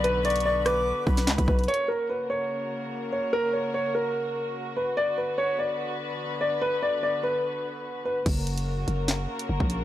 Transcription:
<<
  \new Staff \with { instrumentName = "Flute" } { \time 4/4 \key fis \phrygian \tempo 4 = 146 r8 cis'''4 d'''4 b''4. | r1 | r1 | r1 |
r1 | r1 | }
  \new Staff \with { instrumentName = "Grand piano" } { \time 4/4 \key fis \phrygian b'8 d''8 d''8 b'2 b'8 | cis''8 ais'8 b'8 cis''2 cis''8 | ais'8 cis''8 cis''8 ais'2 b'8 | d''8 b'8 cis''8 d''2 d''8 |
b'8 d''8 d''8 b'2 b'8 | r1 | }
  \new Staff \with { instrumentName = "String section" } { \time 4/4 \key fis \phrygian << { <d b b'>1 | <cis ais ais'>1~ | <cis ais ais'>1 | <d b b'>1~ |
<d b b'>1 | <cis ais ais'>1 | } \\ { fis'1 | fis'1~ | fis'1~ | fis'1~ |
fis'1 | fis'1 | } >> }
  \new Staff \with { instrumentName = "808-style bass" } { \clef bass \time 4/4 \key fis \phrygian b,,2~ b,,16 r16 b,,8 cis,16 b,,16 b,,8 | r1 | r1 | r1 |
r1 | fis,,4. fis,,4 r8 fis,,16 ais,,8. | }
  \new DrumStaff \with { instrumentName = "Drums" } \drummode { \time 4/4 hh8 hh32 hh32 hh32 hh32 r8 <hh ss>8 r8 bd16 <hh sn>16 <hc sn>16 <hh bd>16 bd16 hh32 hh32 | hh32 hh8. r32 r4 r4 r4 | r4 r4 r4 r4 | r4 r4 r4 r4 |
r4 r4 r4 r4 | <cymc hh bd>8 hh16 hh16 r8 hh8 <hc hh sn>8. hh16 r16 bd16 hh8 | }
>>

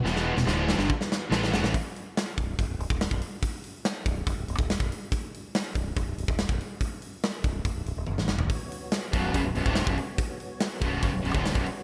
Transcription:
<<
  \new Staff \with { instrumentName = "Tonewheel organ" } { \time 4/4 \key e \major \tempo 4 = 142 <e b fis'>1 | r1 | r1 | r1 |
r1 | <b fis' cis''>1~ | <b fis' cis''>1 | }
  \new Staff \with { instrumentName = "Distorted electric guitar" } { \clef bass \time 4/4 \key e \major <e, b, e>8. <e, b,>16 <d, a, d>8. <g, d>16 r4 <a, e a>8 <e, b,>16 <a, e>16 | r1 | r1 | r1 |
r1 | r1 | r1 | }
  \new Staff \with { instrumentName = "Distorted electric guitar" } { \clef bass \time 4/4 \key e \major <e, b, e>8. <e, b,>16 <d, a, d>8. <g, d>16 r4 <a, e a>8 <e, b,>16 <a, e>16 | r1 | r1 | r1 |
r1 | r4. <b,, fis, b,>8 <fis, cis>16 <b,, fis,>16 <b,, fis,>16 <d, a, d>8 <b,, fis,>16 r8 | r4. <b,, fis, b,>8 <fis, cis>16 <b,, fis,>16 <b,, fis,>16 <d, a, d>8 <b,, fis,>16 r8 | }
  \new Staff \with { instrumentName = "Overdriven electric guitar" } { \clef bass \time 4/4 \key e \major <e, b, e>8. <e, b,>16 <d, a, d>8. <g, d>16 r4 <a, e a>8 <e, b,>16 <a, e>16 | r1 | r1 | r1 |
r1 | r4. <b,, fis, b,>8 <fis, cis>16 <b,, fis,>16 <b,, fis,>16 <d, a, d>8 <b,, fis,>16 r8 | r4. <b,, fis, b,>8 <fis, cis>16 <b,, fis,>16 <b,, fis,>16 <d, a, d>8 <b,, fis,>16 r8 | }
  \new Staff \with { instrumentName = "Fingered electric bass" } { \clef bass \time 4/4 \key e \major e,,8. e,,16 d,,8. g,,16 r4 a,,8 e,,16 a,,16 | r4. b,,,8 fis,,16 b,,,16 b,,,16 d,,8 b,,,16 r8 | r4. b,,,8 fis,,16 b,,,16 b,,,16 d,,8 b,,,16 r8 | r4. b,,,8 fis,,16 b,,,16 b,,,16 d,,8 b,,,16 r8 |
r4. b,,,8 fis,,16 b,,,16 b,,,16 d,,16 fis,,16 a,,16 e,,8 | r4. b,,,8 fis,,16 b,,,16 b,,,16 d,,8 b,,,16 r8 | r4. b,,,8 fis,,16 b,,,16 b,,,16 d,,8 b,,,16 r8 | }
  \new DrumStaff \with { instrumentName = "Drums" } \drummode { \time 4/4 sn16 sn8 sn16 sn8 sn16 sn16 bd16 sn16 sn8 sn16 sn16 sn16 sn16 | <hho bd>8 hho8 <hho sn>8 <hho bd>8 <hho bd>8 hho16 bd16 <hho sn>16 bd16 hho8 | <hho bd>8 hho8 <hho sn>8 <hho bd>8 <hho bd>8 hho16 bd16 <hho sn>16 bd16 hho8 | <hho bd>8 hho8 <hho sn>8 <hho bd>8 <hho bd>8 hho16 bd16 <hho sn>16 bd16 hho8 |
<hho bd>8 hho8 <hho sn>8 <hho bd>8 <hho bd>8 hho8 tommh16 sn16 sn16 tomfh16 | <hho bd>8 hho8 <hho sn>8 <hho bd>8 <hho bd>8 hho16 bd16 <hho sn>16 bd16 hho8 | <hho bd>8 hho8 <hho sn>8 <hho bd>8 <hho bd>8 hho16 bd16 <hho sn>16 bd16 hho8 | }
>>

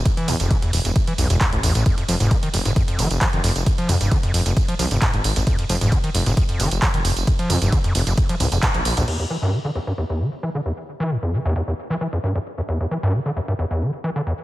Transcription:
<<
  \new Staff \with { instrumentName = "Acid bass" } { \clef bass \time 4/4 \key f \lydian \tempo 4 = 133 r16 e16 g,16 f,16 e16 e,16 e,16 e,16 r16 e16 e,16 e,16 e,16 d,16 e,16 a,16 | f,16 f,16 f16 aes,16 f16 dis16 f,16 aes,16 f,16 f,16 f16 r16 f16 dis16 f,16 r16 | r16 f16 aes,16 g,16 f16 f,16 f,16 f,16 r16 f16 f16 g,16 aes,16 g,16 r16 f,16 | f,16 f,16 f16 aes,16 f16 dis16 f,16 aes,16 f,16 f,16 f16 r16 f16 dis16 f,16 r16 |
r16 f16 aes,16 g,16 f16 f,16 f,16 f,16 r16 f16 aes,16 f,16 aes,16 f16 r16 dis,16 | e,16 e,16 e16 g,16 e16 d16 e,16 g,16 e,16 e,16 e16 r16 e16 d16 e,16 r16 | r16 e16 g,16 f,16 e16 e,16 e,16 e,16 r16 e16 e16 f,16 g,16 f,16 r16 e,16 | e,16 e,16 e16 g,16 e16 d16 e,16 g,16 e,16 e,16 e16 r16 e16 d16 e,16 r16 | }
  \new Staff \with { instrumentName = "Detuned saw bass" } { \clef bass \time 4/4 \key f \lydian r8 e,16 e,,16 r8 e,,16 e,,16 r8 b,,16 e,,16 r16 a,,16 a,,16 a,,16 | r8 f,,16 f,,16 r8 f,,16 f,,16 r8 f,,16 f,,16 r16 f,,16 f,,16 f,,16 | r8 f,16 f,,16 r8 f,,16 f,,16 r8 c,16 f,,16 r16 aes,,16 aes,,16 aes,,16 | r8 f,,16 f,,16 r8 f,,16 f,,16 r8 f,,16 f,,16 r16 f,,16 f,,16 f,,16 |
r8 f,16 f,,16 r8 f,,16 f,,16 r8 c,16 f,,16 r16 ais,,16 ais,,16 ais,,16 | r1 | r1 | r1 | }
  \new DrumStaff \with { instrumentName = "Drums" } \drummode { \time 4/4 <hh bd cymr tamb>16 <hh cymr>16 <hho cymr tamb>16 <hh cymr tamb>16 <hh bd cymr tamb>16 <hh cymr>16 <hho cymr tamb>16 <hh cymr tamb>16 <hh bd cymr tamb>16 <hh cymr>16 <hho cymr tamb>16 <hh cymr tamb>16 <hc hh bd cymr tamb>16 <hh cymr>16 <hho cymr tamb>16 <hh cymr tamb>16 | <hh bd cymr>16 <hh cymr>16 <hho cymr tamb>16 <hh cymr tamb>16 <hh bd cymr tamb>16 <hh cymr>16 <hho cymr tamb>16 <hh cymr tamb>16 <hh bd cymr tamb>16 <hh cymr>16 <hho cymr tamb>16 <hh cymr tamb>16 <hc hh bd cymr>16 <hh cymr>16 <hho cymr tamb>16 <hh cymr tamb>16 | <hh bd cymr>16 <hh cymr>16 <hho cymr tamb>16 <hh cymr tamb>16 <hh bd cymr tamb>16 <hh cymr>16 <hho cymr tamb>16 <hh cymr tamb>16 <hh bd cymr tamb>16 <hh cymr>16 <hho cymr tamb>16 <hh cymr tamb>16 <hc hh bd cymr tamb>16 <hh cymr>16 <hho cymr tamb>16 <hh cymr tamb>16 | <hh bd cymr>16 <hh cymr>16 <hho cymr tamb>16 <hh cymr tamb>16 <hh bd cymr tamb>16 <hh cymr>16 <hho cymr tamb>16 <hh cymr tamb>16 <hh bd cymr tamb>16 <hh cymr>16 <hho cymr tamb>16 <hh cymr tamb>16 <hc hh bd cymr>16 <hh cymr>16 <hho cymr tamb>16 <hh cymr tamb>16 |
<hh bd cymr tamb>16 <hh cymr>16 <hho cymr tamb>16 <hh cymr tamb>16 <hh bd cymr tamb>16 <hh cymr>16 <hho cymr tamb>16 <hh cymr tamb>16 <hh bd cymr tamb>16 <hh cymr>16 <hho cymr tamb>16 <hh cymr tamb>16 <hc hh bd cymr tamb>16 <hh cymr>16 <hho cymr tamb>16 <hh cymr tamb>16 | cymc4 r4 r4 r4 | r4 r4 r4 r4 | r4 r4 r4 r4 | }
>>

